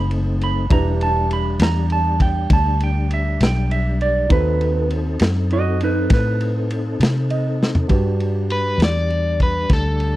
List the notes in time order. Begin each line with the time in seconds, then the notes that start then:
Already playing: F#1 A3 C4 D#4 B5
0.11 ride
0.41 B5, ride
0.70 E1 G3 D4 E4 G4 B4 A#5, kick, ride
1.01 A5, ride
1.31 B5, ride
1.60 E2 A#5, snare, ride
1.90 A5, ride
2.20 G5, kick, ride
2.50 D2 A5, kick, ride
2.80 G5, ride
3.11 E5, ride
3.40 B1 G5, snare, ride
3.71 E5, ride
4.01 D5, ride
4.29 D#2 C4 D#4 F#4 A4 B4, kick, ride
4.34 A4
4.61 ride
4.90 ride
5.19 F#2, snare, ride
5.51 F#4 D#5, ride
5.81 D#4 B4, ride
6.10 A2 B4, kick, snare, ride
6.40 ride
6.70 ride
7.00 C3, snare, ride
7.30 D#5, ride
7.63 snare
7.75 floor tom
7.88 G2 G3 D4 F#4 G4 B4, kick, ride
8.20 ride
8.50 B4, ride
8.78 E2, ride
8.82 D5, snare
9.10 ride
9.40 B4, kick, ride
9.69 D2 A4, kick, snare, ride
10.00 ride